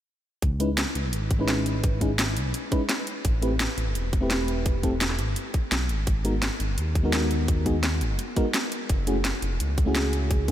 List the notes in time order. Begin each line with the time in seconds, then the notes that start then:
0.42 C#2, kick, closed hi-hat
0.60 G#3 C#4 D#4 E4 B4, closed hi-hat
0.78 snare, closed hi-hat
0.95 C#2, closed hi-hat
1.04 B1
1.13 G#1, closed hi-hat
1.31 kick, closed hi-hat
1.39 G#3 C#4 D#4 E4 B4
1.48 snare, closed hi-hat
1.66 closed hi-hat
1.84 kick, closed hi-hat
2.01 G#3 C#4 D#4 E4 G#4, kick, closed hi-hat
2.19 snare, closed hi-hat
2.37 C#2, closed hi-hat
2.45 B1
2.54 closed hi-hat
2.71 G#3 C#4 D#4 E4 B4, kick, closed hi-hat
2.89 snare, closed hi-hat
3.07 closed hi-hat
3.25 A1, kick, closed hi-hat
3.42 A3 C4 E4 G4 B4, closed hi-hat
3.60 snare, closed hi-hat
3.78 A1, closed hi-hat
3.86 G1
3.95 E1, closed hi-hat
4.13 kick, closed hi-hat
4.21 A3 C4 E4 G4 B4
4.30 snare, closed hi-hat
4.48 closed hi-hat
4.66 kick, closed hi-hat
4.83 A3 C4 E4 G4 A4, kick, closed hi-hat
5.01 snare, closed hi-hat
5.10 snare
5.19 A1, closed hi-hat
5.27 G1
5.36 closed hi-hat
5.54 kick, closed hi-hat
5.72 B1, snare, closed hi-hat
5.89 G#1, closed hi-hat
6.07 G#1, kick, closed hi-hat
6.24 G#3 B3 D#4 F#4 A#4, closed hi-hat
6.42 snare, closed hi-hat
6.60 G#1, closed hi-hat
6.69 F#1
6.78 D#2, closed hi-hat
6.95 kick, closed hi-hat
7.03 G#3 B3 D#4 F#4 A#4
7.13 snare, closed hi-hat
7.31 closed hi-hat
7.48 kick, closed hi-hat
7.65 G#3 B3 D#4 F#4 G#4, kick, closed hi-hat
7.83 snare, closed hi-hat
8.01 G#1, closed hi-hat
8.10 F#1
8.19 closed hi-hat
8.36 G#3 B3 D#4 F#4 A#4, kick, closed hi-hat
8.54 snare, closed hi-hat
8.72 closed hi-hat
8.89 F#1, kick, closed hi-hat
9.07 A3 C#4 E4 F#4 G#4, closed hi-hat
9.25 snare, closed hi-hat
9.42 F#1, closed hi-hat
9.51 E1
9.60 C#2, closed hi-hat
9.78 kick, closed hi-hat
9.86 A3 C#4 E4 F#4 G#4
9.95 snare, closed hi-hat
10.13 closed hi-hat
10.31 kick, closed hi-hat
10.48 A3 C#4 E4, kick, closed hi-hat